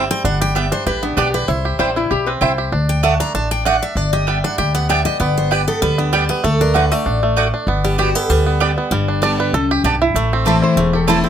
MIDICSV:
0, 0, Header, 1, 6, 480
1, 0, Start_track
1, 0, Key_signature, 1, "major"
1, 0, Tempo, 309598
1, 386, Time_signature, 4, 2, 24, 8
1, 17506, End_track
2, 0, Start_track
2, 0, Title_t, "Resonator guitar played with a steel bar"
2, 0, Program_c, 0, 25
2, 2781, Note_on_c, 0, 72, 120
2, 3024, Note_off_c, 0, 72, 0
2, 3053, Note_on_c, 0, 64, 96
2, 3277, Note_on_c, 0, 67, 103
2, 3279, Note_off_c, 0, 64, 0
2, 3511, Note_on_c, 0, 71, 97
2, 3538, Note_off_c, 0, 67, 0
2, 3589, Note_off_c, 0, 71, 0
2, 3750, Note_on_c, 0, 72, 90
2, 4316, Note_off_c, 0, 72, 0
2, 16488, Note_on_c, 0, 72, 122
2, 16977, Note_on_c, 0, 69, 82
2, 16980, Note_off_c, 0, 72, 0
2, 17506, Note_off_c, 0, 69, 0
2, 17506, End_track
3, 0, Start_track
3, 0, Title_t, "Steel-string acoustic guitar"
3, 0, Program_c, 1, 25
3, 165, Note_on_c, 1, 79, 112
3, 380, Note_off_c, 1, 79, 0
3, 387, Note_on_c, 1, 78, 88
3, 636, Note_off_c, 1, 78, 0
3, 644, Note_on_c, 1, 79, 107
3, 860, Note_off_c, 1, 79, 0
3, 869, Note_on_c, 1, 76, 81
3, 1117, Note_off_c, 1, 76, 0
3, 1117, Note_on_c, 1, 72, 100
3, 1335, Note_off_c, 1, 72, 0
3, 1341, Note_on_c, 1, 71, 89
3, 1592, Note_on_c, 1, 62, 64
3, 1594, Note_off_c, 1, 71, 0
3, 1815, Note_off_c, 1, 62, 0
3, 1823, Note_on_c, 1, 67, 75
3, 2075, Note_off_c, 1, 67, 0
3, 2079, Note_on_c, 1, 71, 95
3, 2294, Note_off_c, 1, 71, 0
3, 2294, Note_on_c, 1, 72, 88
3, 3743, Note_off_c, 1, 72, 0
3, 4483, Note_on_c, 1, 79, 96
3, 4699, Note_off_c, 1, 79, 0
3, 4705, Note_on_c, 1, 81, 82
3, 4957, Note_off_c, 1, 81, 0
3, 4965, Note_on_c, 1, 82, 115
3, 5182, Note_off_c, 1, 82, 0
3, 5189, Note_on_c, 1, 81, 102
3, 5438, Note_off_c, 1, 81, 0
3, 5445, Note_on_c, 1, 79, 109
3, 5662, Note_off_c, 1, 79, 0
3, 5677, Note_on_c, 1, 78, 87
3, 5923, Note_off_c, 1, 78, 0
3, 5931, Note_on_c, 1, 76, 94
3, 6150, Note_off_c, 1, 76, 0
3, 6150, Note_on_c, 1, 74, 85
3, 6394, Note_off_c, 1, 74, 0
3, 6400, Note_on_c, 1, 75, 93
3, 6643, Note_off_c, 1, 75, 0
3, 6643, Note_on_c, 1, 76, 90
3, 6886, Note_off_c, 1, 76, 0
3, 6889, Note_on_c, 1, 78, 102
3, 7097, Note_off_c, 1, 78, 0
3, 7103, Note_on_c, 1, 79, 102
3, 7352, Note_off_c, 1, 79, 0
3, 7358, Note_on_c, 1, 78, 105
3, 7578, Note_off_c, 1, 78, 0
3, 7591, Note_on_c, 1, 76, 83
3, 7824, Note_off_c, 1, 76, 0
3, 7830, Note_on_c, 1, 75, 101
3, 8051, Note_off_c, 1, 75, 0
3, 8057, Note_on_c, 1, 74, 86
3, 8312, Note_off_c, 1, 74, 0
3, 8334, Note_on_c, 1, 72, 88
3, 8560, Note_off_c, 1, 72, 0
3, 8560, Note_on_c, 1, 71, 86
3, 8794, Note_off_c, 1, 71, 0
3, 8800, Note_on_c, 1, 69, 99
3, 9017, Note_off_c, 1, 69, 0
3, 9023, Note_on_c, 1, 71, 111
3, 9275, Note_off_c, 1, 71, 0
3, 9279, Note_on_c, 1, 62, 66
3, 9498, Note_off_c, 1, 62, 0
3, 9500, Note_on_c, 1, 67, 84
3, 9752, Note_on_c, 1, 71, 106
3, 9753, Note_off_c, 1, 67, 0
3, 9975, Note_off_c, 1, 71, 0
3, 9989, Note_on_c, 1, 69, 84
3, 10238, Note_off_c, 1, 69, 0
3, 10246, Note_on_c, 1, 70, 89
3, 10461, Note_off_c, 1, 70, 0
3, 10474, Note_on_c, 1, 71, 85
3, 10721, Note_off_c, 1, 71, 0
3, 10721, Note_on_c, 1, 74, 98
3, 11202, Note_off_c, 1, 74, 0
3, 12162, Note_on_c, 1, 67, 92
3, 12375, Note_off_c, 1, 67, 0
3, 12381, Note_on_c, 1, 66, 78
3, 12639, Note_off_c, 1, 66, 0
3, 12639, Note_on_c, 1, 69, 95
3, 12863, Note_off_c, 1, 69, 0
3, 12863, Note_on_c, 1, 71, 92
3, 13712, Note_off_c, 1, 71, 0
3, 13817, Note_on_c, 1, 43, 95
3, 14290, Note_on_c, 1, 50, 80
3, 14310, Note_on_c, 1, 55, 81
3, 14320, Note_on_c, 1, 59, 78
3, 14324, Note_on_c, 1, 67, 80
3, 14736, Note_off_c, 1, 43, 0
3, 14755, Note_off_c, 1, 50, 0
3, 14765, Note_off_c, 1, 55, 0
3, 14770, Note_off_c, 1, 59, 0
3, 14772, Note_off_c, 1, 67, 0
3, 14794, Note_on_c, 1, 42, 92
3, 15247, Note_off_c, 1, 42, 0
3, 15260, Note_on_c, 1, 43, 85
3, 15720, Note_off_c, 1, 43, 0
3, 15753, Note_on_c, 1, 45, 98
3, 16214, Note_on_c, 1, 52, 93
3, 16226, Note_on_c, 1, 57, 75
3, 16241, Note_on_c, 1, 60, 102
3, 16247, Note_on_c, 1, 64, 84
3, 16665, Note_off_c, 1, 45, 0
3, 16677, Note_off_c, 1, 52, 0
3, 16684, Note_off_c, 1, 57, 0
3, 16691, Note_off_c, 1, 60, 0
3, 16694, Note_off_c, 1, 64, 0
3, 16699, Note_on_c, 1, 40, 97
3, 17175, Note_on_c, 1, 52, 90
3, 17180, Note_on_c, 1, 57, 100
3, 17197, Note_on_c, 1, 60, 91
3, 17206, Note_on_c, 1, 64, 96
3, 17403, Note_off_c, 1, 64, 0
3, 17422, Note_on_c, 1, 64, 63
3, 17427, Note_off_c, 1, 52, 0
3, 17430, Note_off_c, 1, 57, 0
3, 17438, Note_off_c, 1, 60, 0
3, 17506, Note_off_c, 1, 40, 0
3, 17506, Note_off_c, 1, 64, 0
3, 17506, End_track
4, 0, Start_track
4, 0, Title_t, "Mandolin"
4, 0, Program_c, 2, 25
4, 852, Note_on_c, 2, 59, 92
4, 864, Note_on_c, 2, 74, 90
4, 865, Note_on_c, 2, 67, 86
4, 871, Note_on_c, 2, 79, 97
4, 1010, Note_off_c, 2, 59, 0
4, 1016, Note_off_c, 2, 67, 0
4, 1016, Note_off_c, 2, 74, 0
4, 1019, Note_off_c, 2, 79, 0
4, 1811, Note_on_c, 2, 59, 103
4, 1819, Note_on_c, 2, 67, 95
4, 1827, Note_on_c, 2, 74, 105
4, 1830, Note_on_c, 2, 79, 114
4, 1970, Note_off_c, 2, 59, 0
4, 1974, Note_off_c, 2, 67, 0
4, 1978, Note_off_c, 2, 74, 0
4, 1980, Note_off_c, 2, 79, 0
4, 2774, Note_on_c, 2, 60, 84
4, 2782, Note_on_c, 2, 64, 96
4, 2785, Note_on_c, 2, 72, 95
4, 2789, Note_on_c, 2, 79, 96
4, 2932, Note_off_c, 2, 60, 0
4, 2936, Note_off_c, 2, 64, 0
4, 2938, Note_off_c, 2, 72, 0
4, 2940, Note_off_c, 2, 79, 0
4, 3734, Note_on_c, 2, 60, 96
4, 3743, Note_on_c, 2, 64, 93
4, 3744, Note_on_c, 2, 72, 109
4, 3750, Note_on_c, 2, 79, 114
4, 3892, Note_off_c, 2, 60, 0
4, 3897, Note_off_c, 2, 64, 0
4, 3897, Note_off_c, 2, 72, 0
4, 3900, Note_off_c, 2, 79, 0
4, 4697, Note_on_c, 2, 57, 99
4, 4704, Note_on_c, 2, 66, 81
4, 4708, Note_on_c, 2, 74, 96
4, 4715, Note_on_c, 2, 78, 96
4, 4854, Note_off_c, 2, 57, 0
4, 4858, Note_off_c, 2, 66, 0
4, 4859, Note_off_c, 2, 74, 0
4, 4863, Note_off_c, 2, 78, 0
4, 5665, Note_on_c, 2, 57, 101
4, 5673, Note_on_c, 2, 66, 96
4, 5679, Note_on_c, 2, 74, 118
4, 5680, Note_on_c, 2, 78, 113
4, 5818, Note_off_c, 2, 57, 0
4, 5822, Note_off_c, 2, 66, 0
4, 5825, Note_off_c, 2, 74, 0
4, 5825, Note_off_c, 2, 78, 0
4, 6619, Note_on_c, 2, 59, 85
4, 6631, Note_on_c, 2, 67, 94
4, 6633, Note_on_c, 2, 74, 81
4, 6635, Note_on_c, 2, 79, 85
4, 6775, Note_off_c, 2, 59, 0
4, 6781, Note_off_c, 2, 67, 0
4, 6782, Note_off_c, 2, 74, 0
4, 6783, Note_off_c, 2, 79, 0
4, 7585, Note_on_c, 2, 59, 94
4, 7597, Note_on_c, 2, 67, 102
4, 7600, Note_on_c, 2, 74, 106
4, 7603, Note_on_c, 2, 79, 111
4, 7737, Note_off_c, 2, 59, 0
4, 7743, Note_off_c, 2, 67, 0
4, 7745, Note_off_c, 2, 74, 0
4, 7746, Note_off_c, 2, 79, 0
4, 8541, Note_on_c, 2, 59, 92
4, 8544, Note_on_c, 2, 67, 83
4, 8548, Note_on_c, 2, 74, 96
4, 8551, Note_on_c, 2, 79, 92
4, 8695, Note_off_c, 2, 59, 0
4, 8696, Note_off_c, 2, 67, 0
4, 8699, Note_off_c, 2, 74, 0
4, 8700, Note_off_c, 2, 79, 0
4, 9496, Note_on_c, 2, 59, 91
4, 9503, Note_on_c, 2, 67, 99
4, 9512, Note_on_c, 2, 74, 108
4, 9512, Note_on_c, 2, 79, 115
4, 9652, Note_off_c, 2, 59, 0
4, 9656, Note_off_c, 2, 67, 0
4, 9660, Note_off_c, 2, 74, 0
4, 9660, Note_off_c, 2, 79, 0
4, 10446, Note_on_c, 2, 57, 83
4, 10450, Note_on_c, 2, 66, 85
4, 10455, Note_on_c, 2, 74, 88
4, 10462, Note_on_c, 2, 78, 90
4, 10607, Note_off_c, 2, 57, 0
4, 10609, Note_off_c, 2, 66, 0
4, 10611, Note_off_c, 2, 74, 0
4, 10615, Note_off_c, 2, 78, 0
4, 11419, Note_on_c, 2, 57, 105
4, 11427, Note_on_c, 2, 66, 101
4, 11431, Note_on_c, 2, 74, 105
4, 11436, Note_on_c, 2, 78, 99
4, 11573, Note_off_c, 2, 57, 0
4, 11577, Note_off_c, 2, 66, 0
4, 11579, Note_off_c, 2, 74, 0
4, 11581, Note_off_c, 2, 78, 0
4, 12375, Note_on_c, 2, 59, 87
4, 12382, Note_on_c, 2, 67, 98
4, 12389, Note_on_c, 2, 74, 99
4, 12394, Note_on_c, 2, 79, 102
4, 12530, Note_off_c, 2, 59, 0
4, 12534, Note_off_c, 2, 67, 0
4, 12538, Note_off_c, 2, 74, 0
4, 12540, Note_off_c, 2, 79, 0
4, 13339, Note_on_c, 2, 59, 102
4, 13341, Note_on_c, 2, 67, 108
4, 13348, Note_on_c, 2, 74, 102
4, 13352, Note_on_c, 2, 79, 104
4, 13492, Note_off_c, 2, 59, 0
4, 13493, Note_off_c, 2, 67, 0
4, 13497, Note_off_c, 2, 74, 0
4, 13499, Note_off_c, 2, 79, 0
4, 14295, Note_on_c, 2, 59, 82
4, 14306, Note_on_c, 2, 67, 97
4, 14312, Note_on_c, 2, 74, 91
4, 14317, Note_on_c, 2, 81, 97
4, 14450, Note_off_c, 2, 59, 0
4, 14456, Note_off_c, 2, 67, 0
4, 14459, Note_off_c, 2, 74, 0
4, 14461, Note_off_c, 2, 81, 0
4, 15266, Note_on_c, 2, 59, 87
4, 15268, Note_on_c, 2, 67, 99
4, 15273, Note_on_c, 2, 74, 109
4, 15278, Note_on_c, 2, 81, 111
4, 15416, Note_off_c, 2, 59, 0
4, 15417, Note_off_c, 2, 67, 0
4, 15419, Note_off_c, 2, 74, 0
4, 15422, Note_off_c, 2, 81, 0
4, 16205, Note_on_c, 2, 60, 85
4, 16214, Note_on_c, 2, 64, 89
4, 16217, Note_on_c, 2, 72, 85
4, 16224, Note_on_c, 2, 81, 105
4, 16365, Note_off_c, 2, 60, 0
4, 16370, Note_off_c, 2, 64, 0
4, 16371, Note_off_c, 2, 72, 0
4, 16375, Note_off_c, 2, 81, 0
4, 17169, Note_on_c, 2, 60, 104
4, 17174, Note_on_c, 2, 64, 93
4, 17177, Note_on_c, 2, 72, 95
4, 17183, Note_on_c, 2, 81, 116
4, 17328, Note_off_c, 2, 60, 0
4, 17330, Note_off_c, 2, 64, 0
4, 17332, Note_off_c, 2, 72, 0
4, 17335, Note_off_c, 2, 81, 0
4, 17506, End_track
5, 0, Start_track
5, 0, Title_t, "Five-string banjo"
5, 0, Program_c, 3, 105
5, 0, Note_on_c, 3, 55, 74
5, 0, Note_on_c, 3, 67, 66
5, 168, Note_on_c, 3, 60, 59
5, 382, Note_on_c, 3, 62, 68
5, 389, Note_off_c, 3, 60, 0
5, 634, Note_off_c, 3, 67, 0
5, 640, Note_on_c, 3, 67, 58
5, 858, Note_off_c, 3, 55, 0
5, 864, Note_on_c, 3, 55, 59
5, 1071, Note_off_c, 3, 62, 0
5, 1112, Note_on_c, 3, 62, 58
5, 1301, Note_off_c, 3, 67, 0
5, 1344, Note_on_c, 3, 67, 68
5, 1552, Note_off_c, 3, 55, 0
5, 1593, Note_on_c, 3, 59, 64
5, 1777, Note_off_c, 3, 62, 0
5, 1823, Note_on_c, 3, 62, 62
5, 2032, Note_off_c, 3, 67, 0
5, 2086, Note_on_c, 3, 67, 57
5, 2258, Note_off_c, 3, 59, 0
5, 2293, Note_off_c, 3, 62, 0
5, 2299, Note_on_c, 3, 64, 65
5, 2309, Note_off_c, 3, 67, 0
5, 2560, Note_on_c, 3, 67, 64
5, 2777, Note_on_c, 3, 55, 65
5, 2990, Note_off_c, 3, 64, 0
5, 3044, Note_on_c, 3, 64, 62
5, 3222, Note_off_c, 3, 67, 0
5, 3266, Note_on_c, 3, 67, 68
5, 3469, Note_off_c, 3, 55, 0
5, 3525, Note_on_c, 3, 60, 67
5, 3704, Note_off_c, 3, 64, 0
5, 3743, Note_on_c, 3, 64, 54
5, 3954, Note_off_c, 3, 67, 0
5, 4003, Note_on_c, 3, 67, 60
5, 4185, Note_off_c, 3, 60, 0
5, 4219, Note_off_c, 3, 64, 0
5, 4225, Note_on_c, 3, 62, 73
5, 4228, Note_off_c, 3, 67, 0
5, 4703, Note_on_c, 3, 57, 65
5, 4953, Note_off_c, 3, 62, 0
5, 4959, Note_on_c, 3, 62, 56
5, 5184, Note_off_c, 3, 62, 0
5, 5190, Note_on_c, 3, 62, 68
5, 5392, Note_off_c, 3, 57, 0
5, 5444, Note_off_c, 3, 62, 0
5, 5444, Note_on_c, 3, 62, 59
5, 5665, Note_off_c, 3, 62, 0
5, 5665, Note_on_c, 3, 62, 57
5, 5924, Note_off_c, 3, 62, 0
5, 5930, Note_on_c, 3, 62, 57
5, 6145, Note_off_c, 3, 62, 0
5, 6151, Note_on_c, 3, 62, 68
5, 6407, Note_on_c, 3, 67, 60
5, 6632, Note_on_c, 3, 55, 63
5, 6878, Note_off_c, 3, 62, 0
5, 6885, Note_on_c, 3, 62, 60
5, 7065, Note_off_c, 3, 67, 0
5, 7107, Note_on_c, 3, 67, 72
5, 7316, Note_off_c, 3, 55, 0
5, 7359, Note_on_c, 3, 59, 58
5, 7583, Note_off_c, 3, 62, 0
5, 7589, Note_on_c, 3, 62, 61
5, 7794, Note_off_c, 3, 67, 0
5, 7845, Note_on_c, 3, 67, 59
5, 8021, Note_off_c, 3, 59, 0
5, 8069, Note_on_c, 3, 59, 71
5, 8503, Note_off_c, 3, 67, 0
5, 8551, Note_on_c, 3, 67, 64
5, 8754, Note_off_c, 3, 59, 0
5, 8804, Note_on_c, 3, 59, 62
5, 9024, Note_on_c, 3, 55, 68
5, 9235, Note_off_c, 3, 67, 0
5, 9257, Note_off_c, 3, 59, 0
5, 9276, Note_on_c, 3, 59, 68
5, 9482, Note_off_c, 3, 55, 0
5, 9501, Note_on_c, 3, 55, 77
5, 9745, Note_off_c, 3, 59, 0
5, 9760, Note_off_c, 3, 62, 0
5, 9764, Note_on_c, 3, 59, 59
5, 9974, Note_off_c, 3, 55, 0
5, 9981, Note_on_c, 3, 57, 83
5, 9987, Note_off_c, 3, 59, 0
5, 10249, Note_on_c, 3, 62, 64
5, 10465, Note_on_c, 3, 50, 64
5, 10669, Note_off_c, 3, 57, 0
5, 10725, Note_on_c, 3, 57, 74
5, 10941, Note_off_c, 3, 62, 0
5, 10947, Note_on_c, 3, 62, 64
5, 11151, Note_off_c, 3, 50, 0
5, 11189, Note_off_c, 3, 57, 0
5, 11208, Note_on_c, 3, 57, 66
5, 11431, Note_off_c, 3, 62, 0
5, 11431, Note_on_c, 3, 62, 59
5, 11685, Note_off_c, 3, 62, 0
5, 11685, Note_on_c, 3, 62, 58
5, 11863, Note_off_c, 3, 57, 0
5, 11908, Note_on_c, 3, 59, 76
5, 12163, Note_on_c, 3, 55, 61
5, 12386, Note_on_c, 3, 67, 67
5, 12592, Note_off_c, 3, 59, 0
5, 12645, Note_on_c, 3, 59, 62
5, 12821, Note_off_c, 3, 55, 0
5, 12867, Note_on_c, 3, 55, 76
5, 13071, Note_off_c, 3, 67, 0
5, 13105, Note_off_c, 3, 59, 0
5, 13123, Note_on_c, 3, 59, 63
5, 13334, Note_off_c, 3, 55, 0
5, 13352, Note_on_c, 3, 55, 75
5, 13589, Note_off_c, 3, 59, 0
5, 13608, Note_on_c, 3, 59, 61
5, 13813, Note_off_c, 3, 55, 0
5, 13828, Note_off_c, 3, 59, 0
5, 13832, Note_on_c, 3, 55, 79
5, 13856, Note_off_c, 3, 62, 0
5, 14084, Note_on_c, 3, 62, 60
5, 14308, Note_on_c, 3, 74, 120
5, 14514, Note_off_c, 3, 55, 0
5, 14565, Note_off_c, 3, 74, 0
5, 14571, Note_on_c, 3, 71, 92
5, 14741, Note_off_c, 3, 62, 0
5, 14792, Note_on_c, 3, 69, 101
5, 14796, Note_off_c, 3, 71, 0
5, 15053, Note_off_c, 3, 69, 0
5, 15057, Note_on_c, 3, 67, 97
5, 15247, Note_off_c, 3, 67, 0
5, 15265, Note_on_c, 3, 67, 60
5, 15529, Note_on_c, 3, 64, 91
5, 15745, Note_off_c, 3, 67, 0
5, 15746, Note_on_c, 3, 57, 82
5, 16018, Note_on_c, 3, 60, 91
5, 16020, Note_off_c, 3, 64, 0
5, 16230, Note_on_c, 3, 67, 60
5, 16431, Note_off_c, 3, 57, 0
5, 16457, Note_off_c, 3, 60, 0
5, 16471, Note_on_c, 3, 64, 58
5, 16701, Note_on_c, 3, 57, 65
5, 16913, Note_off_c, 3, 67, 0
5, 16951, Note_on_c, 3, 67, 66
5, 17169, Note_off_c, 3, 64, 0
5, 17175, Note_on_c, 3, 64, 55
5, 17389, Note_off_c, 3, 57, 0
5, 17433, Note_on_c, 3, 60, 58
5, 17506, Note_off_c, 3, 60, 0
5, 17506, Note_off_c, 3, 64, 0
5, 17506, Note_off_c, 3, 67, 0
5, 17506, End_track
6, 0, Start_track
6, 0, Title_t, "Upright bass"
6, 0, Program_c, 4, 32
6, 377, Note_on_c, 4, 31, 91
6, 1074, Note_off_c, 4, 31, 0
6, 1340, Note_on_c, 4, 33, 81
6, 1752, Note_off_c, 4, 33, 0
6, 1813, Note_on_c, 4, 35, 88
6, 2228, Note_off_c, 4, 35, 0
6, 2301, Note_on_c, 4, 36, 102
6, 2651, Note_off_c, 4, 36, 0
6, 2780, Note_on_c, 4, 33, 82
6, 3192, Note_off_c, 4, 33, 0
6, 3270, Note_on_c, 4, 35, 78
6, 3678, Note_off_c, 4, 35, 0
6, 3740, Note_on_c, 4, 36, 90
6, 4152, Note_off_c, 4, 36, 0
6, 4219, Note_on_c, 4, 38, 95
6, 4916, Note_off_c, 4, 38, 0
6, 5184, Note_on_c, 4, 33, 84
6, 5879, Note_off_c, 4, 33, 0
6, 6131, Note_on_c, 4, 31, 96
6, 6831, Note_off_c, 4, 31, 0
6, 7107, Note_on_c, 4, 38, 79
6, 7801, Note_off_c, 4, 38, 0
6, 8059, Note_on_c, 4, 31, 99
6, 8755, Note_off_c, 4, 31, 0
6, 9019, Note_on_c, 4, 38, 83
6, 9715, Note_off_c, 4, 38, 0
6, 9987, Note_on_c, 4, 38, 103
6, 10680, Note_off_c, 4, 38, 0
6, 10942, Note_on_c, 4, 33, 90
6, 11636, Note_off_c, 4, 33, 0
6, 11888, Note_on_c, 4, 31, 102
6, 12587, Note_off_c, 4, 31, 0
6, 12860, Note_on_c, 4, 38, 88
6, 13555, Note_off_c, 4, 38, 0
6, 13813, Note_on_c, 4, 31, 91
6, 14511, Note_off_c, 4, 31, 0
6, 14771, Note_on_c, 4, 36, 82
6, 15185, Note_off_c, 4, 36, 0
6, 15253, Note_on_c, 4, 35, 92
6, 15666, Note_off_c, 4, 35, 0
6, 15728, Note_on_c, 4, 33, 92
6, 16428, Note_off_c, 4, 33, 0
6, 16689, Note_on_c, 4, 28, 86
6, 17389, Note_off_c, 4, 28, 0
6, 17506, End_track
0, 0, End_of_file